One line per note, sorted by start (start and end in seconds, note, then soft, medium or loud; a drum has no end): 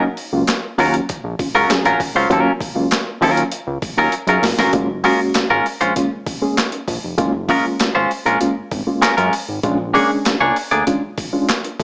0.17 open hi-hat medium
0.33 0.44 C#2 medium
0.33 0.53 F#3 medium
0.33 0.53 A#3 medium
0.33 0.53 C#4 medium
0.33 0.53 F4 medium
0.47 snare loud
0.47 clap medium
0.47 closed hi-hat loud
0.78 1.01 D#2 medium
0.78 1.05 F#3 medium
0.78 0.94 F#3 medium
0.78 1.05 A#3 medium
0.78 1.05 C#4 medium
0.78 0.94 C#4 medium
0.78 1.05 F4 medium
0.78 0.94 F4 medium
0.78 0.94 A#4 medium
0.78 open hi-hat medium
0.94 closed hi-hat medium
1.09 kick medium
1.09 closed hi-hat medium
1.24 1.35 A#1 loud
1.39 1.46 C#4 loud
1.39 1.46 F4 loud
1.39 kick loud
1.39 open hi-hat medium
1.54 1.66 C#2 medium
1.54 1.71 F#3 medium
1.54 1.70 C#4 medium
1.54 1.70 F4 medium
1.54 1.70 A#4 medium
1.69 1.76 A#1 medium
1.69 1.83 F#3 medium
1.69 1.83 A#3 medium
1.69 1.83 C#4 medium
1.69 1.83 G#4 medium
1.69 snare loud
1.69 clap medium
1.69 closed hi-hat medium
1.85 1.96 A#1 medium
1.85 2.01 F#3 medium
1.85 2.01 C#4 medium
1.85 2.01 F4 medium
1.85 2.00 A#4 medium
1.85 closed hi-hat soft
2.00 2.07 C#4 soft
2.00 2.08 F4 soft
2.00 kick medium
2.00 open hi-hat medium
2.15 2.26 C#2 medium
2.15 2.28 F#3 medium
2.15 2.22 C#4 soft
2.15 2.28 C#4 medium
2.15 2.23 F4 soft
2.15 2.28 F4 medium
2.15 2.27 C5 medium
2.30 2.42 D#2 loud
2.30 2.50 F#3 loud
2.30 2.51 F#3 medium
2.30 2.50 A#3 loud
2.30 2.50 C#4 loud
2.30 2.51 C#4 medium
2.30 2.50 F4 loud
2.30 2.51 F4 medium
2.30 2.52 A#4 loud
2.30 kick loud
2.30 closed hi-hat medium
2.61 kick medium
2.61 open hi-hat medium
2.75 2.87 C#2 medium
2.75 2.95 F#3 medium
2.75 2.96 A#3 medium
2.75 2.96 C#4 medium
2.75 2.96 F4 medium
2.91 snare loud
2.91 clap loud
2.91 closed hi-hat loud
3.21 3.44 D#2 loud
3.21 3.48 F#3 medium
3.21 3.42 F#3 medium
3.21 3.48 A#3 medium
3.21 3.48 C#4 medium
3.21 3.42 C#4 medium
3.21 3.48 F4 medium
3.21 3.42 F4 medium
3.21 3.43 A#4 medium
3.21 open hi-hat medium
3.37 closed hi-hat medium
3.52 closed hi-hat loud
3.67 3.78 C#2 medium
3.82 kick loud
3.82 open hi-hat medium
3.97 4.09 D#2 medium
3.97 4.14 F#3 medium
3.97 4.13 C#4 medium
3.97 4.13 F4 medium
3.97 4.13 A#4 medium
4.12 closed hi-hat medium
4.27 4.39 F#2 loud
4.27 4.44 F#3 medium
4.27 4.44 C#4 medium
4.27 4.43 D#4 medium
4.27 4.44 F4 medium
4.27 4.43 G#4 medium
4.27 4.44 A#4 medium
4.27 closed hi-hat soft
4.42 4.54 F#1 loud
4.42 4.58 F4 medium
4.42 4.58 A#4 medium
4.42 snare medium
4.42 open hi-hat medium
4.58 4.69 F1 medium
4.58 4.71 F#3 medium
4.58 4.72 C#4 medium
4.58 4.71 C#4 medium
4.58 4.71 F4 medium
4.58 4.88 F#4 medium
4.58 4.71 A#4 medium
4.58 snare loud
4.73 5.07 F#1 loud
4.73 4.87 G#3 loud
4.73 4.87 A#3 medium
4.73 4.87 C#4 medium
4.73 4.87 F4 loud
4.73 kick loud
4.73 closed hi-hat medium
5.04 5.19 G#3 medium
5.04 5.44 G#3 medium
5.04 5.44 A#3 medium
5.04 5.44 C#4 medium
5.04 5.20 C#4 medium
5.04 5.20 F4 medium
5.04 5.44 F#4 medium
5.04 5.20 A#4 medium
5.04 open hi-hat medium
5.34 5.41 G#1 soft
5.34 snare loud
5.34 clap medium
5.34 closed hi-hat medium
5.50 5.62 G#1 medium
5.50 5.66 G#3 medium
5.50 5.66 C#4 medium
5.50 5.66 F4 medium
5.50 5.65 A#4 medium
5.66 open hi-hat medium
5.81 5.92 A#1 medium
5.81 5.93 G#3 medium
5.81 5.93 C#4 medium
5.81 5.93 F4 medium
5.81 5.93 C5 medium
5.81 closed hi-hat medium
5.96 6.09 G#3 medium
5.96 6.09 A#3 medium
5.96 6.09 C#4 medium
5.96 6.09 F4 medium
5.96 kick medium
5.96 closed hi-hat loud
6.26 6.34 C#4 soft
6.26 6.34 F4 soft
6.26 kick medium
6.26 open hi-hat medium
6.42 6.55 G#3 medium
6.42 6.55 A#3 medium
6.42 6.55 C#4 medium
6.42 6.55 G#4 medium
6.57 snare loud
6.57 clap medium
6.57 closed hi-hat medium
6.72 6.80 C#4 soft
6.72 6.80 D#4 soft
6.72 closed hi-hat medium
6.88 6.99 A#1 medium
6.88 kick medium
6.88 open hi-hat medium
7.04 7.15 F1 medium
7.18 7.52 F#1 loud
7.18 7.31 G#3 loud
7.18 7.31 A#3 loud
7.18 7.32 C#4 loud
7.18 7.31 F4 loud
7.18 kick loud
7.18 closed hi-hat medium
7.49 7.89 G#3 medium
7.49 7.64 G#3 medium
7.49 7.89 A#3 medium
7.49 7.89 C#4 medium
7.49 7.65 C#4 medium
7.49 7.89 F4 loud
7.49 7.65 F4 medium
7.49 7.65 A#4 medium
7.49 kick medium
7.49 open hi-hat medium
7.79 7.86 G#1 medium
7.79 snare loud
7.79 clap medium
7.79 closed hi-hat loud
7.95 8.06 G#1 medium
7.95 8.11 G#3 medium
7.95 8.11 C#4 medium
7.95 8.10 F4 medium
7.95 8.10 C5 medium
8.11 open hi-hat medium
8.25 8.37 A#1 medium
8.25 8.38 G#3 soft
8.25 8.38 C#4 medium
8.25 8.38 F4 medium
8.25 8.38 A#4 medium
8.25 closed hi-hat medium
8.40 8.54 G#3 medium
8.40 8.54 A#3 medium
8.40 8.54 C#4 medium
8.40 8.54 F4 loud
8.40 closed hi-hat medium
8.57 8.63 G#1 medium
8.71 8.83 G#1 medium
8.71 8.79 C#4 soft
8.71 8.79 D#4 soft
8.71 kick loud
8.71 open hi-hat medium
8.87 9.00 G#3 medium
8.87 9.00 A#3 medium
8.87 9.00 C#4 medium
8.87 9.01 F4 medium
9.02 9.14 G#3 medium
9.02 9.14 C#4 medium
9.02 9.14 F4 medium
9.02 9.14 A#4 medium
9.02 snare loud
9.02 clap medium
9.02 closed hi-hat medium
9.17 9.29 F#2 loud
9.17 9.34 G#3 medium
9.17 9.25 C#4 soft
9.17 9.33 C#4 medium
9.17 9.33 F4 medium
9.17 9.25 G#4 soft
9.17 9.33 A#4 medium
9.17 closed hi-hat medium
9.33 open hi-hat medium
9.49 9.60 G#1 medium
9.63 9.98 A#1 loud
9.63 9.77 G#3 loud
9.63 9.77 C#4 loud
9.63 9.77 D4 loud
9.63 9.77 F4 loud
9.63 kick loud
9.63 closed hi-hat medium
9.94 10.35 G#3 medium
9.94 10.10 A#3 medium
9.94 10.35 C#4 medium
9.94 10.10 D4 loud
9.94 10.35 D4 medium
9.94 10.35 G#4 medium
9.94 10.10 G#4 medium
9.94 10.10 C#5 medium
9.94 open hi-hat medium
10.25 10.32 C#2 soft
10.25 snare loud
10.25 clap medium
10.25 closed hi-hat medium
10.41 10.52 C#2 medium
10.41 10.57 A#3 medium
10.41 10.56 D4 medium
10.41 10.56 G#4 medium
10.41 10.56 C#5 medium
10.56 open hi-hat medium
10.71 10.83 D2 loud
10.71 10.84 A#3 soft
10.71 10.84 D4 medium
10.71 10.84 G#4 medium
10.71 10.83 D5 medium
10.71 closed hi-hat medium
10.87 11.00 G#3 medium
10.87 11.00 C#4 medium
10.87 11.01 D4 medium
10.87 11.01 F4 loud
10.87 kick medium
10.87 closed hi-hat medium
11.18 11.25 D4 soft
11.18 11.26 F4 soft
11.18 kick medium
11.18 open hi-hat medium
11.33 11.47 G#3 medium
11.33 11.47 C#4 medium
11.33 11.47 D4 medium
11.33 11.47 F4 medium
11.49 snare loud
11.49 clap medium
11.49 closed hi-hat medium
11.64 11.72 D4 soft
11.64 11.72 F4 soft
11.64 closed hi-hat medium
11.80 11.83 D2 medium
11.80 kick medium